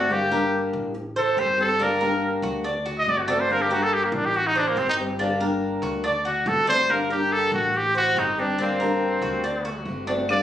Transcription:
0.00 0.68 G1 medium
0.00 0.30 D4 medium
0.00 0.14 F#4 medium
0.09 0.30 D3 medium
0.09 0.30 G3 medium
0.09 0.30 A#3 medium
0.09 0.30 D4 medium
0.09 0.29 G4 medium
0.09 0.54 G4 medium
0.30 0.93 G3 medium
0.30 0.94 A#3 medium
0.30 0.94 D4 medium
0.30 0.93 G4 medium
0.30 0.73 A#4 medium
0.73 1.33 A1 loud
0.94 muted steel-string acoustic guitar stroke medium
1.16 1.41 A4 medium
1.16 1.37 C5 medium
1.36 2.37 G1 medium
1.36 1.57 D#3 soft
1.36 1.58 G3 medium
1.36 1.57 C4 soft
1.36 1.79 G4 medium
1.36 1.56 G4 medium
1.36 1.60 C5 loud
1.58 1.78 G3 medium
1.58 1.79 C4 medium
1.58 1.79 G4 medium
1.58 1.84 A4 medium
1.79 2.00 D3 medium
1.79 2.00 G3 medium
1.79 2.01 A#3 medium
1.79 2.00 D4 medium
1.79 2.00 G4 medium
1.79 2.24 A#4 medium
2.01 2.64 G3 medium
2.01 2.64 A#3 medium
2.01 2.64 D4 medium
2.01 2.64 G4 medium
2.01 2.42 A#4 medium
2.42 3.03 D2 loud
2.42 2.64 F#4 medium
2.64 2.85 D4 medium
2.64 muted steel-string acoustic guitar stroke medium
2.86 3.27 F#4 medium
2.98 3.11 D#5 medium
3.06 4.07 G1 medium
3.06 3.27 D3 soft
3.06 3.28 A3 medium
3.06 3.27 C4 medium
3.06 3.26 F#4 medium
3.06 3.20 D5 medium
3.19 3.31 F#4 medium
3.27 3.49 A3 medium
3.27 3.49 C4 medium
3.27 3.69 D4 loud
3.27 3.48 F#4 medium
3.27 3.42 A4 medium
3.40 3.53 C5 medium
3.49 3.69 D3 medium
3.49 3.70 G3 medium
3.49 3.70 A#3 medium
3.49 3.69 D4 medium
3.49 3.68 G4 medium
3.49 3.63 A#4 medium
3.62 3.74 G4 medium
3.69 4.33 G3 medium
3.69 4.34 A#3 medium
3.69 4.33 D4 medium
3.69 3.85 F#4 medium
3.69 4.33 G4 medium
3.69 4.12 A#4 medium
3.83 3.95 A4 medium
3.93 4.06 G4 medium
4.05 4.16 A#3 medium
4.12 4.72 A1 loud
4.12 4.27 D4 medium
4.26 4.38 G4 medium
4.34 4.48 F#4 medium
4.34 muted steel-string acoustic guitar stroke medium
4.47 4.59 D#4 medium
4.55 4.69 D4 medium
4.55 4.76 C5 medium
4.68 4.80 A#3 medium
4.76 5.76 G1 medium
4.76 4.97 D#3 soft
4.76 4.97 G3 medium
4.76 4.97 C4 medium
4.76 4.88 C4 medium
4.76 5.18 G4 medium
4.76 4.96 G4 soft
4.89 4.95 D#4 medium
4.97 5.18 G3 medium
4.97 5.19 C4 medium
4.97 5.18 G4 medium
5.19 5.39 D3 medium
5.19 5.40 G3 medium
5.19 5.40 A#3 medium
5.19 5.40 D4 medium
5.19 5.39 G4 medium
5.40 6.04 G3 medium
5.40 6.04 A#3 medium
5.40 6.04 D4 medium
5.40 6.03 G4 medium
5.40 5.82 A#4 medium
5.82 6.42 D2 loud
5.82 6.03 F#4 medium
6.04 6.25 D4 medium
6.04 6.25 D5 medium
6.04 muted steel-string acoustic guitar stroke medium
6.25 6.66 F#4 medium
6.25 6.49 F#4 medium
6.46 7.46 G1 loud
6.46 6.67 D3 medium
6.46 6.67 A3 soft
6.46 6.67 C4 soft
6.46 6.66 F#4 medium
6.46 6.68 A4 medium
6.67 6.89 A3 medium
6.67 6.89 C4 medium
6.67 7.09 D4 medium
6.67 6.88 F#4 medium
6.67 6.92 C5 loud
6.89 7.09 D3 medium
6.89 7.10 G3 medium
6.89 7.10 A#3 medium
6.89 7.09 D4 medium
6.89 7.08 G4 medium
6.89 7.11 A#4 medium
7.10 7.73 G3 medium
7.10 7.73 A#3 medium
7.10 7.73 D4 medium
7.10 7.73 G4 medium
7.10 7.34 G4 medium
7.10 7.52 A#4 medium
7.33 7.53 A4 loud
7.52 8.12 A1 loud
7.52 7.78 F#4 medium
7.73 7.96 G4 medium
7.73 muted steel-string acoustic guitar stroke medium
7.95 8.20 F#4 loud
7.95 8.16 C5 medium
8.15 9.16 G1 medium
8.15 8.37 D#3 soft
8.15 8.37 G3 soft
8.15 8.37 C4 soft
8.15 8.41 D#4 medium
8.15 8.58 G4 medium
8.15 8.37 G4 medium
8.38 8.58 G3 medium
8.38 8.59 C4 medium
8.38 8.60 D4 medium
8.38 8.58 G4 medium
8.58 8.79 D3 medium
8.58 8.79 G3 medium
8.58 8.80 A#3 medium
8.58 9.84 C4 medium
8.58 8.79 D4 medium
8.58 8.78 G4 medium
8.80 9.44 G3 medium
8.80 9.44 A#3 medium
8.80 9.43 D4 medium
8.80 9.43 G4 medium
8.80 9.21 A#4 medium
9.22 9.82 D2 loud
9.22 9.43 F#4 medium
9.44 9.64 D4 medium
9.44 muted steel-string acoustic guitar stroke medium
9.65 10.06 F#4 medium
9.85 10.43 G1 medium
9.85 10.07 D3 soft
9.85 10.07 A3 medium
9.85 10.07 C4 medium
9.85 10.06 F#4 medium
10.07 10.29 A3 medium
10.07 10.28 C4 medium
10.07 10.43 D4 medium
10.07 10.28 F#4 medium
10.28 10.43 D3 medium
10.28 10.43 G3 medium
10.28 10.43 A#3 medium
10.28 10.43 D4 medium
10.28 10.43 G4 medium
10.28 10.43 D5 medium
10.28 claves medium

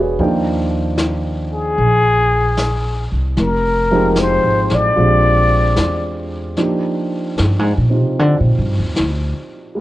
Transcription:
0.00 0.16 E1 medium
0.00 0.20 G#3 medium
0.00 0.20 B3 soft
0.00 0.19 D4 soft
0.00 0.21 E4 soft
0.00 0.21 F#4 medium
0.00 0.28 G#4 soft
0.00 0.21 B4 soft
0.00 0.21 C#5 soft
0.00 0.21 D5 soft
0.19 1.74 D#2 medium
0.19 3.37 F3 soft
0.19 3.37 A#3 soft
0.19 3.37 D4 soft
0.19 3.38 D#4 soft
0.19 3.37 G5 soft
0.19 brush sweep soft
0.98 snare soft
0.98 hi-hat pedal soft
1.54 3.08 G#4 loud
1.78 3.07 A#1 medium
1.78 brush sweep soft
2.57 snare soft
2.57 hi-hat pedal soft
3.12 3.35 C2 medium
3.37 4.39 F1 medium
3.37 brush sweep soft
3.37 snare soft
3.42 4.21 A#4 medium
3.91 4.97 F3 medium
3.91 4.95 G#3 soft
3.91 4.97 C4 soft
3.91 4.97 D#4 soft
3.91 4.98 G4 medium
4.16 4.76 C5 medium
4.16 snare soft
4.16 hi-hat pedal soft
4.44 4.69 G#1 medium
4.69 4.95 A1 medium
4.69 snare soft
4.75 6.34 D5 medium
4.96 5.73 A#1 medium
4.96 6.58 G#3 soft
4.96 6.59 C4 soft
4.96 6.58 F4 soft
4.96 brush sweep soft
5.00 6.56 D4 soft
5.00 6.58 G4 medium
5.76 6.54 E2 medium
5.76 snare soft
5.76 hi-hat pedal soft
6.57 9.77 F3 soft
6.57 9.75 A#3 soft
6.57 9.77 D4 soft
6.57 7.89 D#4 soft
6.57 7.91 G4 soft
6.57 brush sweep soft
6.57 snare soft
7.38 7.59 G2 medium
7.38 snare soft
7.59 7.77 G#2 medium
7.77 7.99 A#2 medium
7.90 9.76 C4 soft
7.90 9.77 D#4 soft
7.90 9.77 F4 soft
7.90 9.78 G4 soft
7.99 8.19 C3 medium
8.17 8.40 D3 medium
8.17 brush sweep soft
8.40 8.58 A#2 medium
8.59 8.77 G2 medium
8.79 8.94 D#2 medium
8.96 9.31 D2 medium
8.96 snare soft
9.75 9.80 G#3 soft
9.75 9.80 A#3 soft
9.75 brush sweep soft

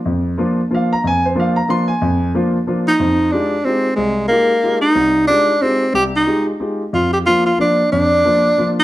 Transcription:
0.05 0.33 F2 medium
0.38 0.59 F3 medium
0.38 0.59 A#3 medium
0.38 0.60 D4 medium
0.38 0.60 F4 medium
0.70 0.92 F3 medium
0.70 0.92 A#3 medium
0.70 0.92 D4 soft
0.70 0.92 F4 medium
0.74 0.92 F5 medium
0.93 1.04 A#5 medium
1.04 1.32 F2 medium
1.04 1.25 G#5 loud
1.26 1.37 C5 medium
1.35 1.57 F3 medium
1.35 1.57 A#3 medium
1.35 1.57 D4 medium
1.35 1.58 F4 medium
1.40 1.57 F5 medium
1.56 1.68 A#5 medium
1.68 1.90 F3 medium
1.68 1.90 A#3 soft
1.68 1.90 D4 soft
1.68 1.90 F4 medium
1.68 1.89 C6 loud
1.88 2.30 G#5 medium
2.02 2.29 F2 medium
2.34 2.56 F3 medium
2.34 2.56 A#3 medium
2.34 2.56 D4 medium
2.34 2.56 F4 medium
2.67 2.88 F3 medium
2.67 2.88 A#3 medium
2.67 2.89 D4 medium
2.67 2.89 F4 medium
2.88 3.34 D#4 medium
2.99 3.28 F2 medium
2.99 3.27 F3 medium
3.32 3.54 G#3 medium
3.32 3.66 D4 medium
3.32 3.54 D#4 soft
3.32 3.54 F4 medium
3.32 3.55 G4 medium
3.65 3.87 G#3 medium
3.65 3.95 C4 medium
3.65 3.87 D#4 soft
3.65 3.87 F4 soft
3.65 3.87 G4 medium
3.96 4.26 C2 medium
3.96 4.27 G#3 medium
4.28 4.52 G#3 medium
4.28 4.79 A#3 medium
4.28 4.52 D#4 soft
4.28 4.52 F4 medium
4.28 4.52 G4 medium
4.63 4.85 G#3 soft
4.63 4.85 D#4 soft
4.63 4.85 F4 soft
4.63 4.85 G4 medium
4.81 5.24 D#4 medium
4.95 5.24 C2 medium
5.27 5.50 G#3 medium
5.27 5.63 D4 medium
5.27 5.51 D#4 medium
5.27 5.51 F4 soft
5.27 5.51 G4 medium
5.61 5.83 G#3 soft
5.61 5.94 C4 medium
5.61 5.83 D#4 soft
5.61 5.83 F4 soft
5.61 5.84 G4 medium
5.94 6.22 C2 medium
5.94 6.04 G4 medium
6.16 6.46 D#4 medium
6.27 6.49 G#3 medium
6.27 6.49 D#4 soft
6.27 6.49 F4 soft
6.27 6.49 G4 medium
6.60 6.82 G#3 medium
6.60 6.82 D#4 soft
6.60 6.82 F4 soft
6.60 6.82 G4 soft
6.93 7.21 F2 medium
6.93 7.13 F4 medium
7.13 7.19 G4 medium
7.26 7.48 F3 medium
7.26 7.48 A#3 soft
7.26 7.48 D4 soft
7.26 7.45 F4 loud
7.26 7.48 F4 medium
7.46 7.58 F4 medium
7.58 7.80 F3 soft
7.58 7.80 A#3 soft
7.58 7.80 D4 soft
7.58 7.90 D4 medium
7.58 7.80 F4 medium
7.92 8.20 F2 medium
7.92 8.74 D4 loud
8.25 8.46 F3 medium
8.25 8.47 A#3 soft
8.25 8.47 D4 medium
8.25 8.47 F4 medium
8.58 8.79 F3 soft
8.58 8.79 A#3 soft
8.58 8.79 D4 soft
8.58 8.80 F4 medium
8.79 8.84 D#4 medium

